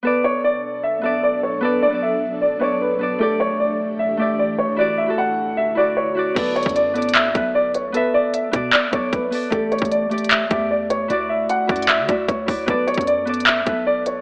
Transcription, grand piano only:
\new Staff \with { instrumentName = "Grand piano" } { \time 4/4 \key b \minor \tempo 4 = 152 b'8 cis''8 d''4 e''8 e''8 d''8 cis''8 | b'8 d''8 e''4 d''8 cis''8 b'4 | a'8 cis''8 d''4 e''8 e''8 d''8 cis''8 | d''8 e''8 fis''4 e''8 d''8 cis''4 |
b'8 cis''8 d''4 e''8 e''8 d''8 cis''8 | b'8 d''8 e''4 d''8 cis''8 b'4 | a'8 cis''8 d''4 e''8 e''8 d''8 cis''8 | d''8 e''8 fis''4 e''8 d''8 cis''4 |
b'8 cis''8 d''4 e''8 e''8 d''8 cis''8 | }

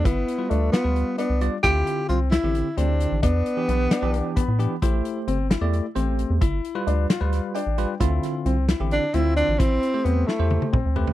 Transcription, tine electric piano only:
\new Staff \with { instrumentName = "Tine electric piano" } { \time 7/8 \key a \minor \tempo 4 = 132 << { r2. r8 | r2. r8 | r2 r8 b''4 | r2. r8 |
r2 r8 g''4 | r2. r8 | r2. r8 | } \\ { r8. <g f' b'>8. r16 <g f' b'>8. r8 <g f' d''>16 r16 | <d c' e' f'>4~ <d c' e' f'>16 r8 <d c' e' g'>8 r16 <d c' e' g'>4 | r8. <e d' g'>8. r16 <e d' g'>8. r8 <e d' g'>16 r16 | <a g' c''>4~ <a g' c''>16 r8 <a g' d''>8 r16 <a g' c''>4 |
r8. <g f' b'>8. r16 <g f' b'>8. r8 <g f' b'>16 r16 | <d c' e' f'>4~ <d c' e' f'>16 r8 <d c' e' g'>8 r16 <d c' e' f'>4 | r8. <a g' c''>8. r16 <a g' c''>8. r8 <a g' b'>16 r16 | } >> }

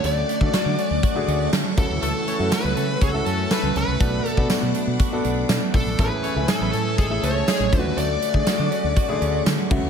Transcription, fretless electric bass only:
\new Staff \with { instrumentName = "Fretless electric bass" } { \clef bass \time 4/4 \key d \lydian \tempo 4 = 121 d,8 r16 d16 r16 d16 r16 d,16 r8 d,8 d16 r16 cis,16 d,16 | cis,16 r8 fis,16 r16 cis,16 cis8 cis,8 fis,8 r16 cis,16 cis,16 c,16 | b,,8 r16 b,16 r16 b,16 r16 b,16 r8 b,,8 b,16 r16 b,,16 bes,,16 | a,,16 r8 cis,16 r16 a,,16 a,8 a,,8 cis,8 r16 a,,16 d,16 dis,16 |
d,8 r16 d16 r16 d16 r16 d,16 r8 d,8 d16 r16 cis,16 d,16 | }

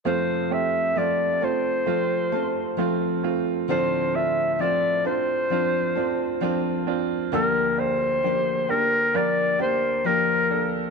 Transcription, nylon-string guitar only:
\new Staff \with { instrumentName = "Nylon-string guitar" } { \time 4/4 \key f \major \tempo 4 = 66 <f c' f' a'>4 <f c' f' a'>8 <c' f' a'>8 <f c' f' a'>8 <c' f' a'>8 <f c' f' a'>4 | <d f c' d' a'>4 <f c' d' a'>8 <c' d' a'>8 <f c' d' a'>8 <c' d' a'>8 <f c' d' a'>4 | <d f bes d' g'>4 <f bes d' g'>8 <bes d' g'>8 <f bes d' g'>8 <bes d' g'>8 <f bes d' g'>4 | }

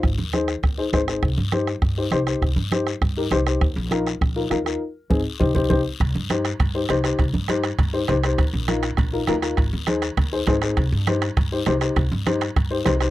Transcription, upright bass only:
\new Staff \with { instrumentName = "Upright bass" } { \clef bass \time 4/4 \key c \minor \tempo 4 = 201 aes,,8 ees,4. ees,4 aes,,4 | c,8 g,4. g,4 c,4 | c,8 g,4. g,4 c,4 | ees,8 bes,,4. bes,,4 ees,4 |
r4 aes,,8 r8 c,8 c,8 c,8 r8 | c,8 g,4. g,4 c,4 | c,8 g,4. g,4 c,4 | ees,8 bes,,4. bes,,4 ees,4 |
aes,,8 ees,4. ees,4 aes,,4 | c,8 g,4. g,4 c,4 | c,8 g,4. g,4 c,4 | }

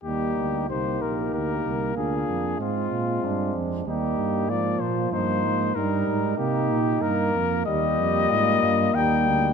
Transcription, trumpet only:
\new Staff \with { instrumentName = "Trumpet" } { \time 3/4 \key ees \major \tempo 4 = 95 g'4 c''8 bes'8 bes'4 | aes'4 f'4. r8 | g'4 d''8 c''8 c''4 | bes'4 g'4 bes'4 |
ees''2 g''4 | }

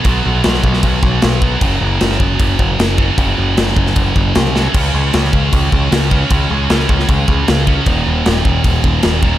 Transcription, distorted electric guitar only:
\new Staff \with { instrumentName = "Distorted electric guitar" } { \clef bass \time 4/4 \key ges \major \tempo 4 = 154 <b, fis b>2.~ <b, fis b>8 <b, fis b>8 | <ges, des ges>2.~ <ges, des ges>8 <ges, des ges>8 | <ges, des ges>2.~ <ges, des ges>8 <ges, des ges>8 | <des aes des'>2.~ <des aes des'>8 <des aes des'>8 |
<des aes des'>2.~ <des aes des'>8 <des aes des'>8 | <ees, bes, ees>2.~ <ees, bes, ees>8 <ees, bes, ees>8 | }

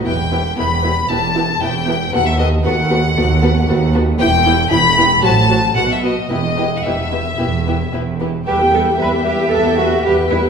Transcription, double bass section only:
\new Staff \with { instrumentName = "Double bass section" } { \clef bass \time 4/4 \key e \minor \tempo 4 = 114 e,,4 e,,4 e,,4 e,,4 | dis,4 dis,4 dis,4 dis,4 | e,,4 e,,4 a,,4 b,,4 | e,,4 e,,4 e,,4 e,,4 |
e,4 e,4 e,4 e,4 | }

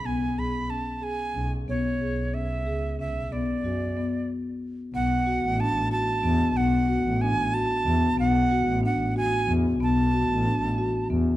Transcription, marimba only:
\new Staff \with { instrumentName = "Marimba" } { \time 5/8 \key b \dorian \tempo 4 = 92 b8 gis'8 cis'8 gis'8 cis'8 | b8 gis'8 cis'8 gis'8 cis'8 | b8 fis'8 b8 r4 | b8 fis'8 d'8 fis'8 b8 |
b8 fis'8 d'8 fis'8 b8 | b8 fis'8 d'8 fis'8 b8 | b8 fis'8 d'8 fis'8 b8 | }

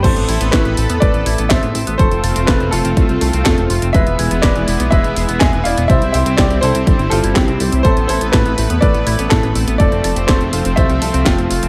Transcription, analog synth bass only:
\new Staff \with { instrumentName = "Analog synth bass" } { \clef bass \time 4/4 \key a \minor \tempo 4 = 123 a,,16 a,,16 a,,16 a,,16 a,,16 a,,16 a,,16 e,16 a,,16 a,,16 a,,16 a,,16 a,,16 a,,16 a,,16 a,,16 | f,,16 f,,16 f,,16 f,,16 f,,16 f,,16 f,,16 f,,16 c,16 c,16 c,16 c,16 f,,16 f,,16 f,,16 f,,16 | e,,16 e,,16 e,,16 e,,16 e,,16 e,,16 e,,16 b,,16 e,,16 e,,16 e,,16 e,,16 e,,16 e,,16 e,,16 e,,16 | c,16 c,16 c,16 c,16 c,16 c,16 c,16 c,16 g,,16 g,,16 g,,16 g,,16 c,16 c,16 c,16 c,16 |
a,,16 a,,16 a,,16 a,,16 a,,16 a,,16 a,,16 e,16 a,,16 a,,16 a,,16 a,,16 a,,16 a,,16 a,,16 a,,16 | f,,16 f,,16 f,,16 f,,16 f,,16 f,,16 f,,16 f,,16 c,16 c,16 c,16 c,16 f,,16 f,,16 f,,16 f,,16 | }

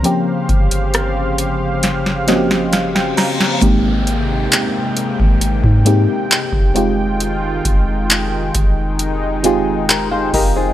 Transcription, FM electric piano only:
\new Staff \with { instrumentName = "FM electric piano" } { \time 4/4 \key aes \major \tempo 4 = 67 << { r2 r8 ees''8 f''16 g''16 bes''8 | r1 | r2. <bes' g''>16 <aes' f''>16 <g' ees''>16 <ees' c''>16 | } \\ { <f bes c' des' g'>4. r4 <f bes c' des' ges' g'>4 r8 | <aes bes c' ees' g'>4. r4 <aes bes c' ees' g'>4 <aes c' ees' f' g'>8~ | <aes c' ees' f' g'>4 r4. <aes c' ees' f' g'>4 r8 | } >> }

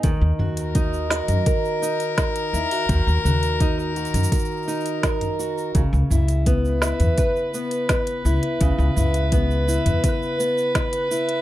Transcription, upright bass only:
\new Staff \with { instrumentName = "Upright bass" } { \clef bass \time 4/4 \key dis \phrygian \tempo 4 = 84 dis,16 dis,16 dis,4 r16 fis,16 r4. dis,16 r16 | dis,16 dis,16 dis,4 r16 fis,16 r2 | cis,16 cis,16 cis,4 r16 e,16 r4. cis,16 r16 | cis,16 cis,16 cis,4 r16 e,16 r2 | }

